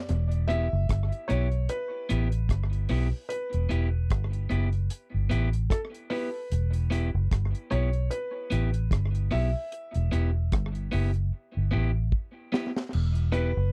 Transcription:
Already playing: D5
0.09 E1, closed hi-hat
0.31 closed hi-hat
0.48 B3 E4 G4 E5, closed hi-hat
0.73 F#1
0.89 G1, kick, cross-stick, closed hi-hat
1.12 closed hi-hat
1.28 B1 B3 E4 G4 C#5, closed hi-hat
1.52 closed hi-hat
1.69 B4, closed hi-hat
2.09 A1 B3 E4 G4, closed hi-hat
2.32 closed hi-hat
2.49 G1, kick, cross-stick, closed hi-hat
2.73 closed hi-hat
2.89 B1 B3 E4 G4, open hi-hat
3.29 B4, closed hi-hat
3.53 E1, closed hi-hat
3.69 E1 B3 E4 G4, closed hi-hat
4.10 G1, kick, cross-stick, closed hi-hat
4.33 closed hi-hat
4.50 F#1 B3 E4 G4, closed hi-hat
4.73 closed hi-hat
4.90 closed hi-hat
5.14 G1
5.30 A1 B3 E4 G4, closed hi-hat
5.53 closed hi-hat
5.70 A4, kick, cross-stick, closed hi-hat
5.94 closed hi-hat
6.10 B3 E4 G4 B4, open hi-hat
6.52 E1, closed hi-hat
6.73 closed hi-hat
6.90 B3 E4 G4, closed hi-hat
7.15 F#1
7.31 G1, kick, cross-stick, closed hi-hat
7.55 closed hi-hat
7.71 B1 B3 E4 G4 C#5, closed hi-hat
7.93 closed hi-hat
8.11 B4, closed hi-hat
8.50 A1 B3 E4 G4, closed hi-hat
8.74 closed hi-hat
8.91 G1, kick, cross-stick, closed hi-hat
9.15 closed hi-hat
9.31 B1 B3 E4 G4 E5, open hi-hat
9.72 closed hi-hat
9.94 E1, closed hi-hat
10.12 E1 B3 E4 G4, closed hi-hat
10.52 G1, kick, cross-stick, closed hi-hat
10.75 closed hi-hat
10.92 F#1 B3 E4 G4, open hi-hat
11.14 closed hi-hat
11.57 G1
11.71 A1 B3 E4 G4
12.12 kick
12.52 B3 E4 G4, snare
12.76 snare
12.93 E1, crash
13.15 closed hi-hat
13.32 B3 E4 G4 B4, closed hi-hat
13.57 F#1

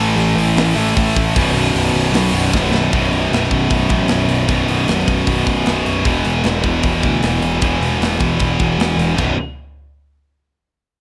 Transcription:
Already playing: A1 A2 E3 A3
0.16 A1, open hi-hat
0.36 A1, open hi-hat
0.56 A1, snare, open hi-hat
0.76 A1 A2 E3 A3, open hi-hat
0.94 A1 A2 E3 A3, kick, open hi-hat
1.16 A1, kick, open hi-hat
1.34 B0 B1 F#2, kick, open hi-hat
1.38 B2
1.54 B0, open hi-hat
1.74 B0, open hi-hat
1.94 B0, open hi-hat
2.12 B1, snare, open hi-hat
2.32 B0 B1 F#2 B2, open hi-hat
2.52 B0 B1 F#2, kick, snare
2.56 B2
2.72 B0, snare
2.90 B0 B1 F#2 B2, kick, open hi-hat
3.11 B0, open hi-hat
3.31 B0, snare, open hi-hat
3.44 snare
3.51 B0, kick, open hi-hat
3.70 B0, kick, open hi-hat
3.89 A1, kick, open hi-hat
4.08 B0, snare, open hi-hat
4.28 B0, open hi-hat
4.46 B0 B1 F#2, kick, open hi-hat
4.51 B2
4.68 B0, open hi-hat
4.88 B0, snare, open hi-hat
4.99 snare
5.07 B0, kick, open hi-hat
5.27 B0, kick, open hi-hat
5.47 B0, kick, open hi-hat
5.66 B0, snare, open hi-hat
5.86 B0, open hi-hat
6.04 E1 E2 B2 E3, kick, open hi-hat
6.25 E1, open hi-hat
6.44 E1, snare, open hi-hat
6.63 E1, kick, open hi-hat
6.83 E1, kick, open hi-hat
7.03 D2, kick, open hi-hat
7.22 E1, snare, open hi-hat
7.41 E1, open hi-hat
7.60 E1 E2 B2 E3, kick, open hi-hat
7.81 E1, open hi-hat
8.00 E1, snare, open hi-hat
8.13 snare
8.20 E1, kick, open hi-hat
8.40 E1, kick, open hi-hat
8.59 E1, kick, open hi-hat
8.78 E1, snare, open hi-hat
8.97 E1, open hi-hat
9.16 B0 B1 F#2 B2, kick, floor tom, crash

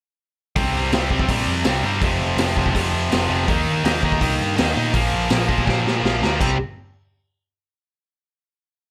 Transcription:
0.56 C2 C3 G3 C4, kick, open hi-hat
0.74 C2
0.92 C2 C3 G3 C4, snare, open hi-hat
1.10 C2 C3 G3 C4, kick
1.19 kick
1.28 A#1 C3 G3 C4, kick, open hi-hat
1.46 F2
1.64 C2 C3 G3 C4, snare, open hi-hat
1.83 G2 C3 G3 C4
2.01 F1 F2 C3 F3, kick, open hi-hat
2.19 F1
2.37 F1 F2 C3 F3, snare, open hi-hat
2.57 F1 F2 C3 F3, kick
2.66 kick
2.75 F1 F2 C3 F3, kick, open hi-hat
2.93 F2
3.11 F1 F2 C3 F3, snare, open hi-hat
3.29 F1 F2 C3 F3
3.48 D#2 D#3 A#3 D#4, kick, open hi-hat
3.67 D#2
3.84 D#2 D#3 A#3 D#4, snare, open hi-hat
4.03 D#2 D#3 A#3 D#4, kick
4.12 kick
4.21 C2 D#3 A#3 D#4, kick, open hi-hat
4.41 G2
4.56 D#2 D#3 A#3 D#4, snare, open hi-hat
4.73 A#2 D#3 A#3 D#4
4.93 A#1 A#2 F3 A#3, kick, open hi-hat
5.13 A#1
5.30 A#1 A#2 F3 A#3, snare, open hi-hat
5.47 A#1 A#2 F3 A#3, kick
5.58 kick
5.65 A#1 A#2 F3 A#3, kick, snare
5.84 A#2, snare
6.03 A#1 A#2 F3 A#3, snare
6.21 D2 A#2 F3 A#3, snare
6.40 C2 C3 G3 C4, kick, crash

